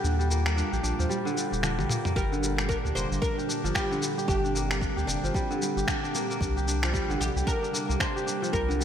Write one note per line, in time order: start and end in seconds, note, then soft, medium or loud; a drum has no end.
0.00 2.12 A#2 medium
0.00 1.24 D3 medium
0.00 0.18 G3 medium
0.00 2.12 G3 medium
0.00 0.30 A#3 medium
0.00 0.56 D4 medium
0.00 2.14 F4 medium
0.00 0.72 G4 medium
0.04 0.63 D#2 loud
0.04 shaker soft
0.19 1.08 G3 medium
0.19 shaker soft
0.30 0.45 A#3 medium
0.30 shaker medium
0.46 1.89 A#3 medium
0.46 finger snap medium
0.46 shaker soft
0.56 0.83 D4 medium
0.56 shaker soft
0.72 0.79 A#1 medium
0.72 1.52 G4 medium
0.72 shaker soft
0.83 0.93 A#1 medium
0.83 1.63 D4 medium
0.83 shaker medium
0.99 1.06 D#2 loud
0.99 1.28 F3 medium
0.99 shaker soft
1.09 1.28 G3 medium
1.09 shaker soft
1.25 2.21 D3 loud
1.25 shaker soft
1.36 1.78 G3 medium
1.36 shaker medium
1.52 1.80 D#1 medium
1.52 2.58 G4 medium
1.52 shaker soft
1.63 2.68 D4 medium
1.63 finger snap medium
1.63 high tom medium
1.63 shaker soft
1.79 1.85 A#1 medium
1.79 2.15 G3 medium
1.79 high tom medium
1.79 shaker soft
1.90 2.05 A#3 medium
1.90 mid tom medium
1.90 shaker medium
2.05 2.95 A#3 medium
2.05 mid tom medium
2.05 shaker soft
2.16 2.75 G1 medium
2.16 6.37 A#2 medium
2.16 6.37 D3 medium
2.16 6.37 G3 medium
2.16 2.34 G3 medium
2.16 4.26 D4 medium
2.16 8.84 G4 medium
2.16 2.67 A#4 loud
2.16 kick medium
2.16 shaker soft
2.32 3.90 D3 medium
2.32 shaker soft
2.43 3.74 G3 medium
2.43 shaker medium
2.58 3.37 G4 medium
2.58 finger snap medium
2.58 shaker soft
2.69 2.84 D4 medium
2.69 2.76 A#4 loud
2.69 kick loud
2.69 shaker soft
2.85 2.91 D2 medium
2.85 3.21 D4 medium
2.85 shaker soft
2.95 3.05 F1 medium
2.95 3.11 A#3 medium
2.95 3.21 C5 loud
2.95 shaker medium
3.11 3.18 G1 loud
3.11 4.54 A#3 medium
3.11 shaker soft
3.22 3.48 D4 medium
3.22 3.74 A#4 loud
3.22 kick loud
3.22 shaker soft
3.38 4.17 G4 medium
3.38 shaker soft
3.49 4.28 D4 medium
3.49 shaker medium
3.64 3.71 G1 medium
3.64 3.94 F3 medium
3.64 shaker soft
3.75 3.94 G3 medium
3.75 4.27 G4 medium
3.75 finger snap medium
3.75 kick medium
3.75 shaker soft
3.91 5.49 D3 medium
3.91 shaker soft
4.02 5.34 G3 medium
4.02 shaker medium
4.18 4.96 G4 medium
4.18 shaker soft
4.28 4.87 G1 loud
4.28 6.39 C4 medium
4.28 4.44 D4 medium
4.28 5.04 G4 loud
4.28 kick loud
4.28 shaker soft
4.44 4.81 D4 medium
4.44 shaker soft
4.55 4.70 A#3 medium
4.55 shaker medium
4.71 6.14 A#3 medium
4.71 finger snap medium
4.71 shaker soft
4.81 5.07 D4 medium
4.81 kick loud
4.81 shaker soft
4.97 5.04 D2 medium
4.97 5.77 G4 medium
4.97 shaker soft
5.07 5.17 F1 medium
5.07 6.10 D4 medium
5.07 5.87 D4 medium
5.07 shaker medium
5.23 5.30 G1 medium
5.23 5.53 F3 medium
5.23 shaker soft
5.34 5.53 G3 medium
5.34 kick loud
5.34 shaker soft
5.50 6.46 D3 medium
5.50 shaker soft
5.61 6.46 G3 medium
5.61 shaker medium
5.77 5.83 G1 medium
5.77 6.56 G4 medium
5.77 shaker soft
5.88 6.03 D4 medium
5.88 finger snap medium
5.88 kick loud
5.88 shaker soft
6.03 6.41 D4 medium
6.03 shaker soft
6.15 6.30 A#3 medium
6.15 shaker medium
6.30 7.73 A#3 medium
6.30 shaker soft
6.40 7.00 C2 medium
6.40 8.84 C3 medium
6.40 8.84 G3 medium
6.40 8.51 D4 medium
6.40 6.67 D4 medium
6.40 kick loud
6.40 shaker soft
6.57 7.36 G4 medium
6.57 shaker soft
6.68 7.46 D4 medium
6.68 shaker medium
6.83 7.12 F3 medium
6.83 finger snap medium
6.83 shaker soft
6.94 7.12 G3 loud
6.94 kick loud
6.94 shaker soft
7.09 7.16 G1 medium
7.09 8.67 D3 medium
7.09 shaker soft
7.20 7.30 A#1 medium
7.20 8.51 G3 medium
7.20 7.28 G4 loud
7.20 shaker medium
7.36 7.43 C2 loud
7.36 8.15 G4 medium
7.36 shaker soft
7.47 7.62 D4 medium
7.47 8.00 A#4 loud
7.47 kick loud
7.47 shaker soft
7.62 8.00 D4 medium
7.62 shaker soft
7.73 7.89 A#3 medium
7.73 shaker medium
7.89 7.96 C2 medium
7.89 8.84 A#3 medium
7.89 shaker soft
8.00 8.26 D4 medium
8.00 8.50 C5 loud
8.00 finger snap medium
8.00 kick loud
8.00 shaker soft
8.16 8.84 G4 medium
8.16 shaker soft
8.26 8.84 D4 medium
8.26 shaker medium
8.42 8.72 F3 medium
8.42 shaker soft
8.53 8.84 C2 loud
8.53 8.72 G3 medium
8.53 8.84 C4 medium
8.53 8.84 A#4 loud
8.53 kick loud
8.53 shaker soft
8.69 8.84 D3 medium
8.69 shaker soft
8.79 8.84 G3 medium